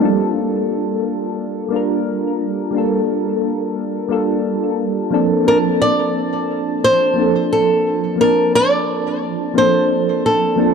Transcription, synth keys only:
0.00 1.66 G3 medium
0.00 1.67 A#3 medium
0.00 1.68 D4 medium
0.00 1.69 F4 medium
0.05 1.70 A4 medium
1.68 2.68 G3 medium
1.68 2.69 A#3 medium
1.68 2.70 D4 medium
1.74 2.71 F4 medium
1.74 2.72 A#4 medium
2.71 4.05 G3 medium
2.71 4.06 A#3 medium
2.71 4.07 D4 medium
2.77 4.08 F4 medium
2.77 4.09 A4 medium
4.08 4.40 G3 medium
4.08 4.40 A#3 medium
4.08 4.41 D4 medium
4.08 4.41 F4 medium
4.08 4.42 A4 medium
5.10 5.42 F3 medium
5.10 5.42 A#3 medium
5.10 5.43 C4 medium
5.10 5.43 D4 medium
5.10 5.44 A4 loud
5.43 7.11 F3 medium
5.43 7.12 A#3 medium
5.43 7.13 C4 medium
5.49 7.14 D4 medium
5.49 7.15 A5 medium
7.14 8.14 F3 medium
7.14 8.15 A#3 medium
7.14 8.16 C4 medium
7.19 8.17 D4 medium
7.19 8.18 A4 medium
8.16 9.50 F3 medium
8.16 9.51 A#3 medium
8.16 9.52 C4 medium
8.22 9.53 D4 medium
8.22 9.54 A5 medium
9.54 9.85 F3 medium
9.54 9.86 A#3 medium
9.54 9.86 C4 medium
9.54 9.86 D4 medium
9.58 9.87 A4 medium
10.56 10.74 F3 loud
10.56 10.74 A#3 medium
10.56 10.74 C4 medium
10.56 10.74 D4 medium
10.56 10.74 A4 loud

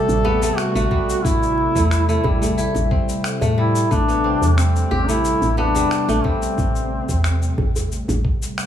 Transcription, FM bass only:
0.08 0.51 A1 loud
0.75 0.87 A1 medium
1.25 1.68 A1 loud
1.75 2.17 E2 medium
2.24 2.68 A1 medium
2.75 3.17 A1 medium
3.41 3.84 A2 medium
3.91 4.34 A1 loud
4.41 4.84 E2 medium
4.91 5.34 A1 medium
5.42 5.84 A1 loud
6.09 6.20 A1 medium
6.58 7.01 A1 loud
7.09 7.51 E2 medium
7.58 8.01 A1 medium
8.08 8.51 A1 loud

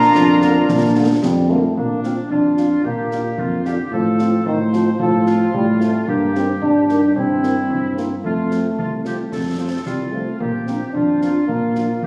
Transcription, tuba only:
0.15 0.60 F2 medium
0.69 1.14 A#2 medium
1.23 1.68 F2 medium
1.77 2.22 A#2 medium
2.31 2.75 F2 soft
2.84 3.29 A#2 medium
3.39 3.79 F2 medium
3.93 4.38 A2 medium
4.46 4.91 A2 medium
5.00 5.45 A2 medium
5.54 5.99 A2 medium
6.08 6.53 G2 medium
6.62 7.07 G2 soft
7.16 7.61 G2 medium
7.70 8.15 G2 soft
8.25 8.70 F2 medium
8.79 9.24 C2 soft
9.33 9.78 F2 soft
9.86 10.31 C2 soft
10.41 10.82 A#2 soft
10.95 11.40 F2 soft
11.49 11.94 A#2 medium
12.03 12.07 F2 soft

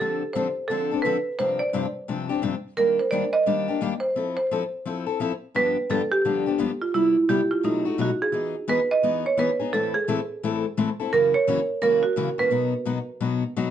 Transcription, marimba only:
0.00 0.36 A4 medium
0.33 0.70 C5 medium
0.68 1.05 A4 loud
1.02 1.39 B4 medium
1.39 1.48 C5 loud
1.59 2.25 D5 loud
2.77 2.99 A#4 loud
2.99 3.05 C5 medium
3.11 3.35 D5 loud
3.33 3.77 D#5 loud
4.00 4.35 C5 medium
4.37 5.02 C5 medium
5.56 5.88 B4 loud
5.91 6.10 A4 medium
6.12 6.56 G4 loud
6.82 6.94 F4 medium
6.94 7.26 E4 medium
7.29 7.49 G4 medium
7.51 7.64 F4 medium
7.65 8.16 D#4 medium
8.02 8.10 F#4 medium
8.22 8.65 G#4 medium
8.69 8.79 B4 loud
8.91 9.26 D#5 loud
9.26 9.39 C#5 medium
9.39 9.74 B4 medium
9.73 9.83 A4 loud
9.94 10.95 G#4 loud
11.13 11.35 A#4 loud
11.34 11.66 C#5 loud
11.82 11.92 A#4 medium
12.03 12.35 F#4 medium
12.39 12.71 B4 medium

